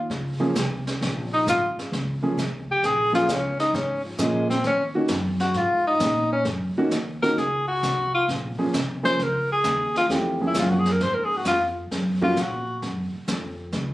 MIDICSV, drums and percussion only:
0, 0, Header, 1, 2, 480
1, 0, Start_track
1, 0, Key_signature, -5, "minor"
1, 0, Tempo, 454545
1, 1066, Time_signature, 4, 2, 24, 8
1, 14720, End_track
2, 0, Start_track
2, 0, Title_t, "Drums"
2, 105, Note_on_c, 9, 36, 16
2, 112, Note_on_c, 9, 25, 41
2, 112, Note_on_c, 9, 38, 37
2, 211, Note_off_c, 9, 36, 0
2, 217, Note_off_c, 9, 38, 0
2, 585, Note_on_c, 9, 44, 50
2, 586, Note_on_c, 9, 36, 18
2, 589, Note_on_c, 9, 38, 53
2, 691, Note_off_c, 9, 36, 0
2, 691, Note_off_c, 9, 44, 0
2, 695, Note_off_c, 9, 38, 0
2, 919, Note_on_c, 9, 38, 35
2, 1025, Note_off_c, 9, 38, 0
2, 1071, Note_on_c, 9, 36, 23
2, 1079, Note_off_c, 9, 25, 0
2, 1079, Note_on_c, 9, 25, 39
2, 1079, Note_on_c, 9, 38, 42
2, 1177, Note_off_c, 9, 36, 0
2, 1185, Note_off_c, 9, 38, 0
2, 1551, Note_on_c, 9, 36, 23
2, 1556, Note_on_c, 9, 44, 52
2, 1560, Note_on_c, 9, 38, 55
2, 1657, Note_off_c, 9, 36, 0
2, 1662, Note_off_c, 9, 44, 0
2, 1666, Note_off_c, 9, 38, 0
2, 1890, Note_on_c, 9, 38, 33
2, 1995, Note_off_c, 9, 38, 0
2, 2032, Note_on_c, 9, 36, 19
2, 2039, Note_off_c, 9, 25, 0
2, 2039, Note_on_c, 9, 25, 39
2, 2039, Note_on_c, 9, 38, 40
2, 2137, Note_off_c, 9, 36, 0
2, 2144, Note_off_c, 9, 38, 0
2, 2509, Note_on_c, 9, 36, 16
2, 2514, Note_on_c, 9, 44, 51
2, 2518, Note_on_c, 9, 38, 51
2, 2615, Note_off_c, 9, 36, 0
2, 2620, Note_off_c, 9, 44, 0
2, 2624, Note_off_c, 9, 38, 0
2, 2989, Note_on_c, 9, 36, 26
2, 2994, Note_off_c, 9, 25, 0
2, 2994, Note_on_c, 9, 25, 41
2, 2994, Note_on_c, 9, 38, 41
2, 3095, Note_off_c, 9, 36, 0
2, 3099, Note_off_c, 9, 38, 0
2, 3322, Note_on_c, 9, 38, 45
2, 3428, Note_off_c, 9, 38, 0
2, 3469, Note_on_c, 9, 36, 23
2, 3469, Note_on_c, 9, 44, 56
2, 3474, Note_on_c, 9, 38, 56
2, 3574, Note_off_c, 9, 36, 0
2, 3575, Note_off_c, 9, 44, 0
2, 3579, Note_off_c, 9, 38, 0
2, 3796, Note_on_c, 9, 38, 37
2, 3902, Note_off_c, 9, 38, 0
2, 3947, Note_on_c, 9, 36, 23
2, 3953, Note_off_c, 9, 25, 0
2, 3953, Note_on_c, 9, 25, 38
2, 3953, Note_on_c, 9, 38, 40
2, 4053, Note_off_c, 9, 36, 0
2, 4058, Note_off_c, 9, 38, 0
2, 4417, Note_on_c, 9, 44, 57
2, 4421, Note_on_c, 9, 38, 53
2, 4425, Note_on_c, 9, 36, 18
2, 4523, Note_off_c, 9, 44, 0
2, 4527, Note_off_c, 9, 38, 0
2, 4531, Note_off_c, 9, 36, 0
2, 4754, Note_on_c, 9, 38, 35
2, 4860, Note_off_c, 9, 38, 0
2, 4898, Note_off_c, 9, 25, 0
2, 4898, Note_on_c, 9, 25, 40
2, 4898, Note_on_c, 9, 38, 41
2, 4902, Note_on_c, 9, 36, 23
2, 5004, Note_off_c, 9, 38, 0
2, 5008, Note_off_c, 9, 36, 0
2, 5364, Note_on_c, 9, 44, 49
2, 5368, Note_on_c, 9, 38, 58
2, 5379, Note_on_c, 9, 36, 24
2, 5470, Note_off_c, 9, 44, 0
2, 5474, Note_off_c, 9, 38, 0
2, 5485, Note_off_c, 9, 36, 0
2, 5700, Note_on_c, 9, 38, 35
2, 5806, Note_off_c, 9, 38, 0
2, 5850, Note_off_c, 9, 25, 0
2, 5850, Note_on_c, 9, 25, 42
2, 5850, Note_on_c, 9, 38, 38
2, 5858, Note_on_c, 9, 36, 19
2, 5956, Note_off_c, 9, 38, 0
2, 5963, Note_off_c, 9, 36, 0
2, 6333, Note_on_c, 9, 44, 54
2, 6337, Note_on_c, 9, 36, 22
2, 6337, Note_on_c, 9, 38, 52
2, 6439, Note_off_c, 9, 44, 0
2, 6443, Note_off_c, 9, 36, 0
2, 6443, Note_off_c, 9, 38, 0
2, 6811, Note_off_c, 9, 25, 0
2, 6811, Note_on_c, 9, 25, 45
2, 6811, Note_on_c, 9, 38, 41
2, 6815, Note_on_c, 9, 36, 19
2, 6916, Note_off_c, 9, 38, 0
2, 6921, Note_off_c, 9, 36, 0
2, 7298, Note_on_c, 9, 44, 49
2, 7300, Note_on_c, 9, 36, 17
2, 7302, Note_on_c, 9, 38, 55
2, 7404, Note_off_c, 9, 44, 0
2, 7406, Note_off_c, 9, 36, 0
2, 7408, Note_off_c, 9, 38, 0
2, 7640, Note_on_c, 9, 38, 35
2, 7746, Note_off_c, 9, 38, 0
2, 7786, Note_on_c, 9, 36, 19
2, 7792, Note_off_c, 9, 25, 0
2, 7792, Note_on_c, 9, 25, 44
2, 7792, Note_on_c, 9, 38, 38
2, 7891, Note_off_c, 9, 36, 0
2, 7898, Note_off_c, 9, 38, 0
2, 8266, Note_on_c, 9, 36, 25
2, 8268, Note_on_c, 9, 44, 47
2, 8272, Note_on_c, 9, 38, 56
2, 8372, Note_off_c, 9, 36, 0
2, 8373, Note_off_c, 9, 44, 0
2, 8378, Note_off_c, 9, 38, 0
2, 8747, Note_on_c, 9, 36, 23
2, 8753, Note_off_c, 9, 25, 0
2, 8753, Note_on_c, 9, 25, 43
2, 8753, Note_on_c, 9, 38, 41
2, 8852, Note_off_c, 9, 36, 0
2, 8858, Note_off_c, 9, 38, 0
2, 9226, Note_on_c, 9, 44, 61
2, 9227, Note_on_c, 9, 36, 19
2, 9230, Note_on_c, 9, 38, 60
2, 9332, Note_off_c, 9, 44, 0
2, 9333, Note_off_c, 9, 36, 0
2, 9336, Note_off_c, 9, 38, 0
2, 9555, Note_on_c, 9, 38, 36
2, 9660, Note_off_c, 9, 38, 0
2, 9706, Note_on_c, 9, 36, 22
2, 9707, Note_off_c, 9, 25, 0
2, 9707, Note_on_c, 9, 25, 48
2, 9707, Note_on_c, 9, 38, 39
2, 9811, Note_off_c, 9, 36, 0
2, 9813, Note_off_c, 9, 38, 0
2, 10176, Note_on_c, 9, 44, 58
2, 10181, Note_on_c, 9, 38, 58
2, 10183, Note_on_c, 9, 36, 17
2, 10282, Note_off_c, 9, 44, 0
2, 10286, Note_off_c, 9, 38, 0
2, 10289, Note_off_c, 9, 36, 0
2, 10515, Note_on_c, 9, 38, 38
2, 10621, Note_off_c, 9, 38, 0
2, 10661, Note_on_c, 9, 36, 20
2, 10665, Note_off_c, 9, 25, 0
2, 10665, Note_on_c, 9, 25, 48
2, 10665, Note_on_c, 9, 38, 42
2, 10767, Note_off_c, 9, 36, 0
2, 10770, Note_off_c, 9, 38, 0
2, 11132, Note_on_c, 9, 44, 50
2, 11137, Note_on_c, 9, 38, 58
2, 11141, Note_on_c, 9, 36, 25
2, 11238, Note_off_c, 9, 44, 0
2, 11242, Note_off_c, 9, 38, 0
2, 11247, Note_off_c, 9, 36, 0
2, 11463, Note_on_c, 9, 38, 39
2, 11569, Note_off_c, 9, 38, 0
2, 11621, Note_on_c, 9, 36, 22
2, 11622, Note_off_c, 9, 25, 0
2, 11622, Note_on_c, 9, 25, 42
2, 11622, Note_on_c, 9, 38, 42
2, 11727, Note_off_c, 9, 36, 0
2, 11728, Note_off_c, 9, 38, 0
2, 12088, Note_on_c, 9, 44, 59
2, 12093, Note_on_c, 9, 38, 57
2, 12100, Note_on_c, 9, 36, 23
2, 12194, Note_off_c, 9, 44, 0
2, 12198, Note_off_c, 9, 38, 0
2, 12206, Note_off_c, 9, 36, 0
2, 12582, Note_on_c, 9, 36, 22
2, 12583, Note_off_c, 9, 25, 0
2, 12583, Note_on_c, 9, 25, 53
2, 12583, Note_on_c, 9, 38, 44
2, 12687, Note_off_c, 9, 36, 0
2, 12689, Note_off_c, 9, 38, 0
2, 12909, Note_on_c, 9, 36, 53
2, 13014, Note_off_c, 9, 36, 0
2, 13055, Note_on_c, 9, 44, 55
2, 13059, Note_on_c, 9, 38, 57
2, 13063, Note_on_c, 9, 36, 18
2, 13161, Note_off_c, 9, 44, 0
2, 13165, Note_off_c, 9, 38, 0
2, 13169, Note_off_c, 9, 36, 0
2, 13541, Note_off_c, 9, 25, 0
2, 13541, Note_on_c, 9, 25, 41
2, 13541, Note_on_c, 9, 38, 40
2, 13543, Note_on_c, 9, 36, 19
2, 13647, Note_off_c, 9, 38, 0
2, 13649, Note_off_c, 9, 36, 0
2, 14020, Note_on_c, 9, 44, 55
2, 14024, Note_on_c, 9, 36, 18
2, 14024, Note_on_c, 9, 38, 59
2, 14126, Note_off_c, 9, 44, 0
2, 14129, Note_off_c, 9, 36, 0
2, 14130, Note_off_c, 9, 38, 0
2, 14494, Note_off_c, 9, 25, 0
2, 14494, Note_on_c, 9, 25, 43
2, 14494, Note_on_c, 9, 38, 44
2, 14501, Note_on_c, 9, 36, 20
2, 14599, Note_off_c, 9, 38, 0
2, 14607, Note_off_c, 9, 36, 0
2, 14720, Note_off_c, 9, 25, 0
2, 14720, End_track
0, 0, End_of_file